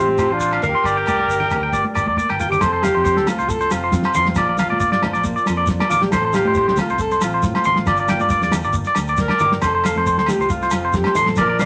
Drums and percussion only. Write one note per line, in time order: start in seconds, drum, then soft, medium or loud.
0.08 high conga medium
0.18 cross-stick medium
0.18 closed hi-hat soft
0.18 low agogo medium
0.18 shekere medium
0.40 kick medium
0.40 shekere medium
0.51 cross-stick medium
0.51 low agogo medium
0.62 closed hi-hat medium
0.62 low conga medium
0.62 shekere medium
0.84 kick medium
0.84 cross-stick medium
0.84 low agogo medium
0.84 shekere medium
1.06 cross-stick medium
1.06 closed hi-hat medium
1.06 high conga medium
1.06 low agogo medium
1.06 shekere medium
1.28 kick medium
1.28 shekere medium
1.40 low conga medium
1.50 cross-stick medium
1.50 closed hi-hat soft
1.50 low conga medium
1.50 low agogo medium
1.50 shekere medium
1.73 kick medium
1.73 high conga medium
1.73 shekere medium
1.85 high conga medium
1.95 cross-stick medium
1.95 closed hi-hat soft
1.95 low agogo medium
1.95 shekere medium
2.06 kick medium
2.06 high conga medium
2.17 kick medium
2.17 high conga medium
2.17 shekere medium
2.29 cross-stick medium
2.29 high conga medium
2.29 low agogo medium
2.40 closed hi-hat medium
2.40 low conga medium
2.40 shekere medium
2.52 low conga medium
2.52 shekere soft
2.61 kick loud
2.61 snare medium
2.61 low conga medium
2.61 low agogo medium
2.61 shekere loud
2.83 snare medium
2.83 low conga medium
2.83 low agogo medium
2.83 shekere medium
3.05 kick loud
3.05 shekere loud
3.16 snare medium
3.26 snare medium
3.26 high conga medium
3.26 low conga medium
3.26 low agogo medium
3.26 shekere medium
3.39 shekere soft
3.48 kick medium
3.48 snare soft
3.48 shekere loud
3.61 shekere soft
3.71 snare medium
3.71 low agogo medium
3.71 shekere medium
3.92 kick medium
3.92 snare medium
3.92 shekere loud
4.03 snare medium
4.03 low agogo medium
4.14 low conga medium
4.14 shekere medium
4.25 snare medium
4.25 high conga medium
4.35 kick loud
4.35 snare medium
4.35 low conga medium
4.35 low agogo medium
4.35 shekere loud
4.58 snare medium
4.58 low conga medium
4.58 low agogo medium
4.58 shekere medium
4.72 high conga medium
4.80 kick loud
4.80 shekere loud
4.92 snare medium
5.02 snare medium
5.02 high conga medium
5.02 low conga medium
5.02 low agogo medium
5.14 shekere soft
5.24 kick medium
5.24 snare soft
5.24 shekere loud
5.37 shekere soft
5.46 snare medium
5.46 low agogo medium
5.46 shekere medium
5.66 kick medium
5.66 snare medium
5.66 shekere loud
5.80 snare medium
5.80 high conga medium
5.80 low agogo medium
5.91 low conga medium
5.91 shekere medium
6.01 snare medium
6.01 high conga medium
6.12 kick loud
6.12 snare medium
6.12 low conga medium
6.12 low agogo medium
6.12 shekere loud
6.33 snare medium
6.33 low conga medium
6.33 low agogo medium
6.33 shekere medium
6.45 high conga medium
6.54 kick loud
6.54 snare soft
6.54 shekere loud
6.68 snare medium
6.77 snare medium
6.77 high conga medium
6.77 low conga medium
6.77 low agogo medium
6.77 shekere medium
6.89 shekere soft
6.99 kick medium
6.99 snare soft
6.99 shekere medium
7.11 snare soft
7.11 shekere soft
7.21 snare medium
7.21 low agogo medium
7.21 shekere medium
7.43 kick loud
7.43 snare medium
7.43 shekere loud
7.54 snare medium
7.54 high conga medium
7.54 low agogo medium
7.64 low conga medium
7.64 shekere medium
7.76 snare medium
7.76 high conga medium
7.86 kick loud
7.86 snare medium
7.86 low conga medium
7.86 low agogo medium
7.86 shekere medium
7.97 shekere soft
8.08 snare medium
8.08 low conga medium
8.08 low agogo medium
8.08 shekere medium
8.20 high conga medium
8.20 shekere soft
8.29 kick loud
8.29 snare soft
8.29 shekere loud
8.42 snare medium
8.42 shekere soft
8.51 snare medium
8.51 high conga medium
8.51 low conga medium
8.51 low agogo medium
8.51 shekere medium
8.63 shekere soft
8.73 kick medium
8.73 shekere loud
8.84 snare soft
8.84 shekere soft
8.95 snare medium
8.95 low agogo medium
8.95 shekere medium
9.07 shekere soft
9.17 kick medium
9.17 snare medium
9.17 shekere loud
9.28 snare medium
9.28 high conga medium
9.28 low agogo medium
9.39 low conga medium
9.39 shekere medium
9.52 snare medium
9.52 high conga medium
9.62 kick loud
9.62 snare medium
9.62 low conga medium
9.62 low agogo medium
9.62 shekere loud
9.84 snare medium
9.84 low conga medium
9.84 low agogo medium
9.84 shekere medium
9.96 high conga medium
10.06 kick medium
10.06 shekere loud
10.18 snare medium
10.26 snare medium
10.26 high conga medium
10.26 low conga medium
10.26 low agogo medium
10.26 shekere medium
10.41 shekere soft
10.49 kick medium
10.49 snare soft
10.49 shekere loud
10.62 snare soft
10.62 shekere soft
10.71 snare medium
10.71 low agogo medium
10.71 shekere medium
10.93 kick loud
10.93 snare medium
10.93 shekere loud
11.04 snare medium
11.04 high conga medium
11.04 low agogo medium
11.15 low conga medium
11.15 shekere medium
11.26 snare medium
11.26 high conga medium
11.36 kick loud
11.36 snare medium
11.36 low conga medium
11.36 low agogo medium
11.36 shekere loud
11.59 snare medium
11.59 low conga medium
11.59 low agogo medium
11.59 shekere medium